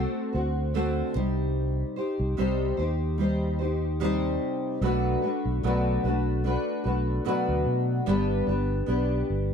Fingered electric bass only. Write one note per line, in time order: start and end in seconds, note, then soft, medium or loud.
0.34 1.01 D2 medium
1.16 1.82 C2 medium
2.20 2.35 C2 medium
2.39 2.72 C2 medium
2.79 4.37 D#2 medium
4.81 5.15 B1 loud
5.45 5.60 B1 loud
5.64 5.97 B1 medium
6.04 6.56 B1 loud
6.86 7.19 B1 loud
7.48 7.63 D2 medium
7.66 8.00 B2 medium
8.08 8.41 G1 medium
8.48 8.81 G1 loud
8.88 9.22 B1 medium
9.30 9.54 G1 medium